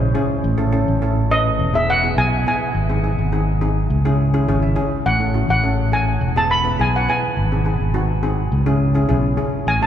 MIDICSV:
0, 0, Header, 1, 4, 480
1, 0, Start_track
1, 0, Tempo, 576923
1, 362, Time_signature, 4, 2, 24, 8
1, 8209, End_track
2, 0, Start_track
2, 0, Title_t, "Steel pan"
2, 0, Program_c, 0, 114
2, 0, Note_on_c, 0, 73, 68
2, 91, Note_off_c, 0, 73, 0
2, 1094, Note_on_c, 0, 75, 81
2, 1459, Note_on_c, 0, 76, 82
2, 1461, Note_off_c, 0, 75, 0
2, 1563, Note_off_c, 0, 76, 0
2, 1581, Note_on_c, 0, 78, 96
2, 1815, Note_on_c, 0, 80, 99
2, 1819, Note_off_c, 0, 78, 0
2, 1920, Note_off_c, 0, 80, 0
2, 2063, Note_on_c, 0, 80, 82
2, 3942, Note_off_c, 0, 80, 0
2, 4210, Note_on_c, 0, 78, 84
2, 4544, Note_off_c, 0, 78, 0
2, 4579, Note_on_c, 0, 78, 73
2, 4936, Note_on_c, 0, 80, 88
2, 4942, Note_off_c, 0, 78, 0
2, 5303, Note_off_c, 0, 80, 0
2, 5304, Note_on_c, 0, 81, 84
2, 5416, Note_on_c, 0, 83, 91
2, 5417, Note_off_c, 0, 81, 0
2, 5657, Note_off_c, 0, 83, 0
2, 5666, Note_on_c, 0, 80, 87
2, 5780, Note_off_c, 0, 80, 0
2, 5791, Note_on_c, 0, 78, 69
2, 5900, Note_off_c, 0, 78, 0
2, 5904, Note_on_c, 0, 80, 81
2, 7300, Note_off_c, 0, 80, 0
2, 8053, Note_on_c, 0, 80, 94
2, 8161, Note_off_c, 0, 80, 0
2, 8175, Note_on_c, 0, 81, 79
2, 8209, Note_off_c, 0, 81, 0
2, 8209, End_track
3, 0, Start_track
3, 0, Title_t, "Steel pan"
3, 0, Program_c, 1, 114
3, 123, Note_on_c, 1, 64, 71
3, 125, Note_on_c, 1, 68, 85
3, 126, Note_on_c, 1, 61, 78
3, 339, Note_off_c, 1, 64, 0
3, 340, Note_off_c, 1, 61, 0
3, 340, Note_off_c, 1, 68, 0
3, 481, Note_on_c, 1, 69, 79
3, 482, Note_on_c, 1, 64, 63
3, 483, Note_on_c, 1, 61, 74
3, 553, Note_off_c, 1, 69, 0
3, 554, Note_off_c, 1, 61, 0
3, 554, Note_off_c, 1, 64, 0
3, 603, Note_on_c, 1, 64, 64
3, 604, Note_on_c, 1, 69, 77
3, 605, Note_on_c, 1, 61, 70
3, 748, Note_off_c, 1, 64, 0
3, 748, Note_off_c, 1, 69, 0
3, 749, Note_off_c, 1, 61, 0
3, 848, Note_on_c, 1, 61, 69
3, 849, Note_on_c, 1, 69, 81
3, 851, Note_on_c, 1, 64, 67
3, 990, Note_off_c, 1, 61, 0
3, 991, Note_off_c, 1, 69, 0
3, 992, Note_off_c, 1, 64, 0
3, 1089, Note_on_c, 1, 61, 67
3, 1092, Note_on_c, 1, 64, 54
3, 1092, Note_on_c, 1, 71, 70
3, 1302, Note_off_c, 1, 61, 0
3, 1304, Note_off_c, 1, 64, 0
3, 1304, Note_off_c, 1, 71, 0
3, 1446, Note_on_c, 1, 59, 72
3, 1446, Note_on_c, 1, 64, 62
3, 1450, Note_on_c, 1, 68, 73
3, 1588, Note_off_c, 1, 59, 0
3, 1588, Note_off_c, 1, 64, 0
3, 1590, Note_off_c, 1, 68, 0
3, 1693, Note_on_c, 1, 59, 68
3, 1693, Note_on_c, 1, 64, 61
3, 1696, Note_on_c, 1, 68, 76
3, 1760, Note_off_c, 1, 59, 0
3, 1760, Note_off_c, 1, 64, 0
3, 1761, Note_off_c, 1, 68, 0
3, 1812, Note_on_c, 1, 59, 62
3, 1812, Note_on_c, 1, 64, 61
3, 1814, Note_on_c, 1, 68, 75
3, 1953, Note_off_c, 1, 59, 0
3, 1953, Note_off_c, 1, 64, 0
3, 1954, Note_off_c, 1, 68, 0
3, 2048, Note_on_c, 1, 59, 69
3, 2052, Note_on_c, 1, 64, 59
3, 2053, Note_on_c, 1, 68, 72
3, 2263, Note_off_c, 1, 59, 0
3, 2265, Note_off_c, 1, 64, 0
3, 2265, Note_off_c, 1, 68, 0
3, 2407, Note_on_c, 1, 60, 59
3, 2407, Note_on_c, 1, 63, 55
3, 2409, Note_on_c, 1, 68, 67
3, 2478, Note_off_c, 1, 60, 0
3, 2478, Note_off_c, 1, 63, 0
3, 2478, Note_off_c, 1, 68, 0
3, 2527, Note_on_c, 1, 68, 65
3, 2528, Note_on_c, 1, 63, 53
3, 2529, Note_on_c, 1, 60, 55
3, 2671, Note_off_c, 1, 68, 0
3, 2672, Note_off_c, 1, 60, 0
3, 2672, Note_off_c, 1, 63, 0
3, 2766, Note_on_c, 1, 60, 75
3, 2766, Note_on_c, 1, 68, 74
3, 2767, Note_on_c, 1, 63, 69
3, 2911, Note_off_c, 1, 60, 0
3, 2911, Note_off_c, 1, 63, 0
3, 2911, Note_off_c, 1, 68, 0
3, 3006, Note_on_c, 1, 63, 69
3, 3007, Note_on_c, 1, 60, 73
3, 3007, Note_on_c, 1, 68, 85
3, 3222, Note_off_c, 1, 60, 0
3, 3222, Note_off_c, 1, 63, 0
3, 3222, Note_off_c, 1, 68, 0
3, 3369, Note_on_c, 1, 61, 72
3, 3372, Note_on_c, 1, 64, 76
3, 3374, Note_on_c, 1, 68, 91
3, 3511, Note_off_c, 1, 61, 0
3, 3512, Note_off_c, 1, 64, 0
3, 3513, Note_off_c, 1, 68, 0
3, 3610, Note_on_c, 1, 61, 76
3, 3610, Note_on_c, 1, 64, 74
3, 3610, Note_on_c, 1, 68, 87
3, 3679, Note_off_c, 1, 61, 0
3, 3679, Note_off_c, 1, 64, 0
3, 3679, Note_off_c, 1, 68, 0
3, 3732, Note_on_c, 1, 68, 89
3, 3732, Note_on_c, 1, 73, 66
3, 3734, Note_on_c, 1, 61, 84
3, 3736, Note_on_c, 1, 64, 67
3, 3842, Note_off_c, 1, 73, 0
3, 3848, Note_on_c, 1, 76, 66
3, 3874, Note_off_c, 1, 68, 0
3, 3875, Note_off_c, 1, 61, 0
3, 3876, Note_off_c, 1, 64, 0
3, 3957, Note_off_c, 1, 76, 0
3, 3957, Note_on_c, 1, 80, 59
3, 3959, Note_on_c, 1, 61, 75
3, 3961, Note_on_c, 1, 64, 67
3, 3961, Note_on_c, 1, 68, 89
3, 4179, Note_off_c, 1, 61, 0
3, 4179, Note_off_c, 1, 64, 0
3, 4180, Note_off_c, 1, 68, 0
3, 4184, Note_off_c, 1, 80, 0
3, 4326, Note_on_c, 1, 64, 51
3, 4327, Note_on_c, 1, 61, 54
3, 4327, Note_on_c, 1, 69, 64
3, 4397, Note_off_c, 1, 64, 0
3, 4398, Note_off_c, 1, 61, 0
3, 4398, Note_off_c, 1, 69, 0
3, 4444, Note_on_c, 1, 61, 52
3, 4444, Note_on_c, 1, 66, 64
3, 4445, Note_on_c, 1, 64, 60
3, 4590, Note_off_c, 1, 61, 0
3, 4590, Note_off_c, 1, 64, 0
3, 4590, Note_off_c, 1, 66, 0
3, 4687, Note_on_c, 1, 61, 65
3, 4688, Note_on_c, 1, 69, 75
3, 4689, Note_on_c, 1, 64, 53
3, 4832, Note_off_c, 1, 61, 0
3, 4832, Note_off_c, 1, 69, 0
3, 4833, Note_off_c, 1, 64, 0
3, 4926, Note_on_c, 1, 64, 52
3, 4927, Note_on_c, 1, 61, 60
3, 4927, Note_on_c, 1, 69, 64
3, 5142, Note_off_c, 1, 61, 0
3, 5142, Note_off_c, 1, 64, 0
3, 5142, Note_off_c, 1, 69, 0
3, 5292, Note_on_c, 1, 59, 64
3, 5292, Note_on_c, 1, 68, 76
3, 5293, Note_on_c, 1, 64, 63
3, 5432, Note_off_c, 1, 59, 0
3, 5432, Note_off_c, 1, 64, 0
3, 5432, Note_off_c, 1, 68, 0
3, 5527, Note_on_c, 1, 71, 74
3, 5530, Note_on_c, 1, 59, 62
3, 5531, Note_on_c, 1, 64, 57
3, 5598, Note_off_c, 1, 71, 0
3, 5599, Note_off_c, 1, 59, 0
3, 5600, Note_off_c, 1, 64, 0
3, 5650, Note_on_c, 1, 64, 63
3, 5652, Note_on_c, 1, 68, 74
3, 5653, Note_on_c, 1, 59, 69
3, 5793, Note_off_c, 1, 64, 0
3, 5794, Note_off_c, 1, 59, 0
3, 5794, Note_off_c, 1, 68, 0
3, 5896, Note_on_c, 1, 59, 58
3, 5896, Note_on_c, 1, 71, 74
3, 5897, Note_on_c, 1, 64, 52
3, 6106, Note_off_c, 1, 71, 0
3, 6107, Note_off_c, 1, 59, 0
3, 6107, Note_off_c, 1, 64, 0
3, 6256, Note_on_c, 1, 60, 60
3, 6258, Note_on_c, 1, 63, 56
3, 6258, Note_on_c, 1, 68, 59
3, 6322, Note_off_c, 1, 60, 0
3, 6323, Note_off_c, 1, 63, 0
3, 6323, Note_off_c, 1, 68, 0
3, 6367, Note_on_c, 1, 63, 51
3, 6368, Note_on_c, 1, 60, 58
3, 6370, Note_on_c, 1, 68, 65
3, 6511, Note_off_c, 1, 60, 0
3, 6511, Note_off_c, 1, 63, 0
3, 6512, Note_off_c, 1, 68, 0
3, 6607, Note_on_c, 1, 60, 76
3, 6607, Note_on_c, 1, 63, 69
3, 6608, Note_on_c, 1, 66, 84
3, 6751, Note_off_c, 1, 60, 0
3, 6751, Note_off_c, 1, 63, 0
3, 6751, Note_off_c, 1, 66, 0
3, 6846, Note_on_c, 1, 68, 82
3, 6847, Note_on_c, 1, 60, 82
3, 6849, Note_on_c, 1, 63, 64
3, 7061, Note_off_c, 1, 60, 0
3, 7061, Note_off_c, 1, 68, 0
3, 7062, Note_off_c, 1, 63, 0
3, 7207, Note_on_c, 1, 61, 78
3, 7209, Note_on_c, 1, 64, 71
3, 7209, Note_on_c, 1, 68, 92
3, 7349, Note_off_c, 1, 61, 0
3, 7349, Note_off_c, 1, 64, 0
3, 7349, Note_off_c, 1, 68, 0
3, 7443, Note_on_c, 1, 61, 75
3, 7447, Note_on_c, 1, 64, 74
3, 7449, Note_on_c, 1, 68, 86
3, 7515, Note_off_c, 1, 61, 0
3, 7517, Note_off_c, 1, 64, 0
3, 7518, Note_off_c, 1, 68, 0
3, 7561, Note_on_c, 1, 64, 74
3, 7561, Note_on_c, 1, 68, 84
3, 7564, Note_on_c, 1, 61, 84
3, 7707, Note_off_c, 1, 64, 0
3, 7707, Note_off_c, 1, 68, 0
3, 7709, Note_off_c, 1, 61, 0
3, 7798, Note_on_c, 1, 61, 74
3, 7800, Note_on_c, 1, 68, 77
3, 7803, Note_on_c, 1, 64, 62
3, 8016, Note_off_c, 1, 61, 0
3, 8018, Note_off_c, 1, 68, 0
3, 8019, Note_off_c, 1, 64, 0
3, 8168, Note_on_c, 1, 61, 56
3, 8168, Note_on_c, 1, 69, 59
3, 8172, Note_on_c, 1, 64, 48
3, 8209, Note_off_c, 1, 61, 0
3, 8209, Note_off_c, 1, 64, 0
3, 8209, Note_off_c, 1, 69, 0
3, 8209, End_track
4, 0, Start_track
4, 0, Title_t, "Fingered electric bass"
4, 0, Program_c, 2, 33
4, 0, Note_on_c, 2, 34, 92
4, 109, Note_off_c, 2, 34, 0
4, 366, Note_on_c, 2, 33, 84
4, 706, Note_off_c, 2, 33, 0
4, 732, Note_on_c, 2, 33, 68
4, 1294, Note_off_c, 2, 33, 0
4, 1323, Note_on_c, 2, 28, 84
4, 1777, Note_off_c, 2, 28, 0
4, 1804, Note_on_c, 2, 35, 87
4, 2031, Note_off_c, 2, 35, 0
4, 2285, Note_on_c, 2, 32, 72
4, 2627, Note_off_c, 2, 32, 0
4, 2650, Note_on_c, 2, 32, 77
4, 3214, Note_off_c, 2, 32, 0
4, 3246, Note_on_c, 2, 37, 88
4, 3699, Note_off_c, 2, 37, 0
4, 3728, Note_on_c, 2, 32, 85
4, 3954, Note_off_c, 2, 32, 0
4, 4211, Note_on_c, 2, 33, 77
4, 4550, Note_off_c, 2, 33, 0
4, 4566, Note_on_c, 2, 33, 74
4, 5132, Note_off_c, 2, 33, 0
4, 5166, Note_on_c, 2, 28, 87
4, 5619, Note_off_c, 2, 28, 0
4, 5650, Note_on_c, 2, 35, 86
4, 5875, Note_off_c, 2, 35, 0
4, 6131, Note_on_c, 2, 32, 85
4, 6470, Note_off_c, 2, 32, 0
4, 6492, Note_on_c, 2, 32, 67
4, 7054, Note_off_c, 2, 32, 0
4, 7087, Note_on_c, 2, 37, 84
4, 7539, Note_off_c, 2, 37, 0
4, 7569, Note_on_c, 2, 35, 90
4, 7793, Note_off_c, 2, 35, 0
4, 8045, Note_on_c, 2, 33, 74
4, 8209, Note_off_c, 2, 33, 0
4, 8209, End_track
0, 0, End_of_file